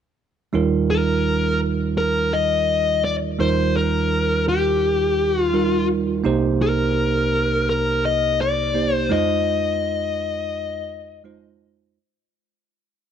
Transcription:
0.53 tine electric piano D#2 D#3 G3 D#4 F4 A#4
0.90 lead electric guitar A#4
1.98 lead electric guitar A#4
2.33 lead electric guitar D#5
3.04 lead electric guitar D5
3.39 tine electric piano D#2 D#3 G3 D#4 F4 A#4, lead electric guitar C5
3.76 lead electric guitar A#4
4.49 lead electric guitar G4
5.42 lead electric guitar F4
5.53 tine electric piano G3 D#4 F4 A#4
6.24 tine electric piano C2 C3 A#3 D#4 G4 C5
6.62 lead electric guitar A#4
7.70 lead electric guitar A#4
8.05 lead electric guitar D#5
8.41 lead electric guitar D5
8.74 tine electric piano A#3 D#4 G4 C5
8.95 lead electric guitar C5
9.09 tine electric piano F2 G#3 D#4 F4 C5, lead electric guitar D#5
11.24 tine electric piano G#3 D#4 F4 C5

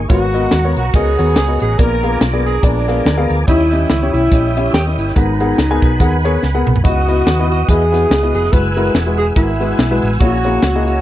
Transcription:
Already playing: tonewheel organ C#6
0.08 fingered electric bass G#1, grand piano G#2 B3 F#4 A#4 C#5, saxophone section A#3 B3 F#4, alto saxophone F#4, tonewheel organ A#4 F#5 A#5, kick, closed hi-hat
0.34 grand piano B3 F#4 A#4 D#5, closed hi-hat
0.51 fingered electric bass D#2, snare, closed hi-hat
0.64 grand piano B3 F#4 A#4 C#5
0.76 fingered electric bass B1, saxophone section F#4, alto saxophone F#4, closed hi-hat
0.94 fingered electric bass C#2, saxophone section B3 C#4 G#4, grand piano B3 F#4 A#4 D#5, alto saxophone G#4, kick, closed hi-hat
1.18 fingered electric bass D#2, grand piano B3 F#4 A#4 C#5, closed hi-hat
1.36 fingered electric bass C#2, alto saxophone G#4, snare, closed hi-hat
1.48 grand piano B3 F#4 A#4 D#5
1.60 fingered electric bass A1, saxophone section G#4, alto saxophone G#4, closed hi-hat
1.78 fingered electric bass A#1, grand piano A#2 B3 G#4 A#4 D5, saxophone section D4 F4 A#4, alto saxophone A#4, tonewheel organ G#5 D6, kick, closed hi-hat
2.03 grand piano B3 G#4 A#4 F5, closed hi-hat
2.21 fingered electric bass B1, snare, closed hi-hat
2.33 grand piano B3 G#4 A#4 D5
2.46 saxophone section G#4, alto saxophone G#4, closed hi-hat
2.63 fingered electric bass A#1, saxophone section F3 G#3 D4, grand piano B3 G#4 A#4 D5, alto saxophone D4, kick, closed hi-hat
2.88 grand piano B3 G#4 A#4 F5, snare, closed hi-hat
3.05 fingered electric bass D2, snare, closed hi-hat
3.18 grand piano B3 G#4 A#4 F5
3.30 fingered electric bass D2, closed hi-hat
3.47 fingered electric bass D#2, grand piano D#3 C#4 E4 G4 D#5, saxophone section G3 C#4 E4, alto saxophone E4, tonewheel organ C#5 E5 G5 D#6, kick, closed hi-hat
3.72 grand piano C#4 E4 G4 D#5, closed hi-hat
3.90 fingered electric bass C#2, alto saxophone E4, snare, closed hi-hat
4.02 grand piano C#4 E4 G4 C#5
4.13 fingered electric bass B1, saxophone section G3 C#4 E4, alto saxophone E4, closed hi-hat
4.32 fingered electric bass A#1, grand piano C#4 E4 G4 D#5, kick, closed hi-hat
4.57 grand piano C#4 E4 G4 E5, closed hi-hat
4.73 fingered electric bass D#2, saxophone section A#3 C#4 G4, alto saxophone G4, snare, closed hi-hat
4.87 grand piano C#4 E4 G4 D#5
4.97 fingered electric bass G1, alto saxophone E4, closed hi-hat
5.08 snare
5.15 fingered electric bass G#1, grand piano G#2 B3 G#4 A#4 F#5, saxophone section F#3 B3 D#4, alto saxophone D#4, tonewheel organ B4 F#5 G#5 B5, kick, closed hi-hat
5.40 grand piano B3 G#4 A#4 F#5, closed hi-hat
5.58 fingered electric bass C#2, snare, closed hi-hat
5.71 grand piano B3 G#4 A#4 G#5
5.82 fingered electric bass B1, kick, closed hi-hat
6.00 fingered electric bass D#2, grand piano B3 G#4 A#4 F#5, kick, closed hi-hat
6.24 grand piano B3 G#4 A#4 C#5, closed hi-hat
6.43 fingered electric bass C#2, snare
6.55 grand piano B3 G#4 A#4 F#5
6.67 fingered electric bass C2, mid tom
6.76 floor tom
6.84 fingered electric bass C#2, grand piano C#3 B3 E4 F#4 D#5, saxophone section B3 D#4 F#4, alto saxophone F#4, tonewheel organ B4 D#5 F#5 D#6, kick, closed hi-hat
7.08 grand piano B3 E4 F#4 D#5, closed hi-hat
7.27 fingered electric bass D#2, snare, closed hi-hat
7.39 grand piano B3 E4 F#4 D#5
7.51 alto saxophone F#4, saxophone section F#4, closed hi-hat
7.68 fingered electric bass E2, grand piano B3 E4 F#4 D#5, saxophone section B3 E4 G#4, alto saxophone G#4, kick, closed hi-hat
7.92 grand piano B3 E4 F#4 B4, snare, closed hi-hat
8.10 fingered electric bass C#2, snare, closed hi-hat
8.23 grand piano B3 E4 F#4 D#5
8.34 fingered electric bass F1, alto saxophone G#4, saxophone section G#4, closed hi-hat
8.45 snare
8.52 fingered electric bass F#1, grand piano G#3 E4 F#4 B4, saxophone section E4 G#4 B4, alto saxophone B4, tonewheel organ F#5 G#5 E6, kick, closed hi-hat
8.76 grand piano G#3 E4 F#4 A#4, closed hi-hat
8.94 fingered electric bass E1, snare, closed hi-hat
9.06 grand piano G#3 E4 F#4 B4
9.18 alto saxophone G#4, saxophone section G#4, closed hi-hat
9.36 fingered electric bass G#1, grand piano G#3 E4 F#4 A#4, saxophone section G#3 B3 E4, alto saxophone E4, kick, closed hi-hat
9.60 grand piano G#3 E4 F#4 B4, closed hi-hat
9.78 fingered electric bass B1, snare, closed hi-hat
9.91 grand piano G#3 E4 F#4 B4
10.02 fingered electric bass A1, closed hi-hat
10.12 snare
10.20 fingered electric bass A#1, grand piano A#2 A#3 E4 G#4 C#5, saxophone section C#4 F#4, alto saxophone F#4, tonewheel organ C#5 A#5, kick, closed hi-hat
10.44 grand piano A#3 E4 G#4 C#5, closed hi-hat
10.63 fingered electric bass C#2, snare, closed hi-hat
10.75 grand piano A#3 E4 G#4 D#5
10.86 alto saxophone F#4, saxophone section F#4, closed hi-hat

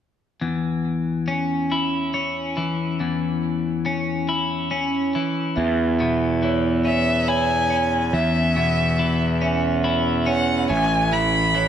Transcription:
0.41 clean electric guitar E2
1.28 clean electric guitar C#4
1.72 clean electric guitar E4
2.14 clean electric guitar C#4
2.57 clean electric guitar E3
3.00 clean electric guitar E2
3.86 clean electric guitar C#4
4.29 clean electric guitar E4
4.71 clean electric guitar C#4
5.15 clean electric guitar E3
5.56 clean electric guitar E2, picked electric bass E2, vibraphone E5
6.00 clean electric guitar B2
6.43 clean electric guitar E3, vibraphone C#5
6.85 clean electric guitar C#4, violin E5
7.28 clean electric guitar E4, vibraphone C#5, violin G#5
7.70 clean electric guitar C#4
8.13 picked electric bass E2, clean electric guitar E2, vibraphone E5, violin E5
8.56 clean electric guitar B2, vibraphone F#5
8.99 clean electric guitar E3
9.42 clean electric guitar C#4, vibraphone E5
9.84 clean electric guitar E4
10.26 clean electric guitar C#4, vibraphone C#5, violin F#5
10.69 picked electric bass A1, clean electric guitar A2, vibraphone E5, violin G#5
11.12 clean electric guitar E3, violin B5
11.55 clean electric guitar E3, vibraphone C#5

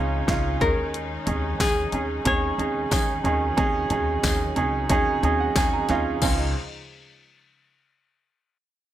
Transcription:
Already playing: upright bass C#2, upright piano G#2 C#4 D#4 F4 G#4, string section F3 G#3 C#4 D#4
0.27 upright bass C#2, upright piano C#4 D#4 F4, kick, snare, closed hi-hat
0.60 upright bass D#2, upright piano D#3 C#4 D#4 G#4, string section D#3, hollow-body jazz guitar A#4, kick, closed hi-hat, floor tom
0.94 closed hi-hat
1.26 upright bass D#2, upright piano C#4 D#4 G#4, closed hi-hat, floor tom
1.59 upright bass D#2, upright piano C#4 D#4 G#4, hollow-body jazz guitar G#4, kick, snare, closed hi-hat, tambourine
1.92 upright bass D#2, upright piano C#4 D#4 G#4, closed hi-hat
2.25 upright bass D#2, upright piano C#4 D#4 G#4, hollow-body jazz guitar C#5, kick, closed hi-hat
2.58 upright bass D#2, upright piano C#4 D#4 G#4, closed hi-hat
2.91 upright bass D#2, upright piano C#4 D#4 G#4, kick, snare, closed hi-hat, tambourine
3.24 upright bass D#2, upright piano D#3 C#4 D#4 G#4, string section F#3, closed hi-hat, floor tom
3.57 upright bass D#2, upright piano C#4 D#4 G#4, kick, closed hi-hat
3.90 upright bass D#2, upright piano C#4 D#4 G#4, closed hi-hat, floor tom
4.23 upright bass D#2, upright piano C#4 D#4 G#4, kick, snare, closed hi-hat, tambourine
4.56 upright bass C#2, upright piano C#4 D#4 G#4, closed hi-hat, floor tom
4.89 upright bass D#2, upright piano C#4 D#4 G#4, kick, closed hi-hat
5.23 upright bass D#2, upright piano C#4 D#4 G#4 D#5, closed hi-hat
5.40 upright piano F#5
5.56 upright bass D#2, upright piano C#4 D#4 G#4 G#5, kick, snare, closed hi-hat, tambourine
5.73 upright piano A#5
5.89 upright bass D#2, upright piano C#4 D#4 F4, snare, closed hi-hat, floor tom
6.21 upright bass C#2, upright piano C#2 C#4 D#4 F4, string section C#3 F3 G#3 D#4, kick, crash, tambourine

